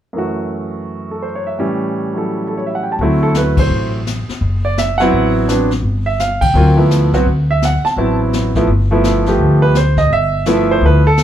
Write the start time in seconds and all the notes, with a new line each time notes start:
0.13 F#2 E3 A3
0.18 F#4
1.11 A4
1.22 C5
1.35 C#5
1.47 E5
1.58 A2 E3 G3 C#4
2.14 F#3 E4 A4
2.48 A4
2.57 C#5
2.67 E5
2.75 F#5
2.83 G5
2.92 A5
2.99 D2 F#3 A3 C4 E4, brush sweep
3.23 A4
3.35 B4, snare, hi-hat pedal
3.57 C5, kick, ride
3.70 A1, brush sweep
4.07 snare, hi-hat pedal
4.28 muted upright bass stroke, snare
4.41 F#1, brush sweep
4.65 D5
4.78 E5, snare, hi-hat pedal
4.98 F#3 B3 C4 E4 F#5, snare
5.12 A1, brush sweep
5.49 F#3 B3 C4 D4, snare, hi-hat pedal
5.71 snare
5.83 G1, brush sweep
6.06 E5
6.20 F5, snare, hi-hat pedal
6.41 D2 G5, kick, ride
6.54 D2 F#3 A#3 C4 F4, brush sweep
6.76 F3 A3 B3 E4
6.91 snare, hi-hat pedal
7.12 C2 F#3 B3 C4 F#4, snare
7.25 D2, brush sweep
7.51 E5
7.62 F#5, snare, hi-hat pedal
7.84 A5, muted upright bass stroke, snare
7.97 A1 F#3 B3 C4 E4, brush sweep
8.33 snare, hi-hat pedal
8.55 F3 A3 B3 E4, kick, snare
8.67 G1, brush sweep
8.91 F3 A3 B3 E4
9.04 snare, hi-hat pedal
9.26 F3 A3 B3 G4, snare
9.38 D2, brush sweep
9.62 B4
9.75 C5, snare, hi-hat pedal
9.97 D#5, kick, snare
10.10 G1 E5, brush sweep
10.46 F3 A3 B3 E4, snare, hi-hat pedal
10.71 C5
10.81 D2, brush sweep
10.86 B4
11.07 A4
11.17 snare, hi-hat pedal